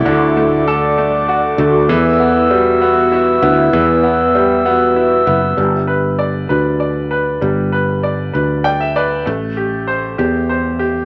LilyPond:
<<
  \new Staff \with { instrumentName = "Glass harmonica" } { \time 6/8 \key g \major \tempo 4. = 65 <a' d'' fis'' d'''>2. | <b' e'' e'''>2.~ | <b' e'' e'''>2. | r2. |
r2. | r2. | }
  \new Staff \with { instrumentName = "Grand piano" } { \time 6/8 \key g \major << { r2. | r2. | r2. | r2. |
r2 g''16 e''16 d''8 | r2. | } \\ { <d a fis'>8 a8 a'8 a8 fis'8 a8 | e8 b8 g8 b8 e'8 b8 | e8 b8 g8 b8 e'8 b8 | g8 b'8 d''8 b'8 d''8 b'8 |
g8 b'8 d''8 b'8 d''8 b'8 | a8 g'8 c''8 g'8 c''8 g'8 | } >> }
  \new Staff \with { instrumentName = "French horn section" } { \time 6/8 \key g \major e'4 d'4. fis'8 | e'4 fis'4. e'8~ | e'8 r8 g'8 fis'4 e'8 | r2. |
r2. | r2. | }
  \new Staff \with { instrumentName = "Fretless electric bass" } { \clef bass \time 6/8 \key g \major d,2~ d,8 d,8 | e,2~ e,8 d,8 | e,2~ e,8 fis,,8 | g,,4. d,4. |
g,,4. d,4. | a,,4. e,4. | }
>>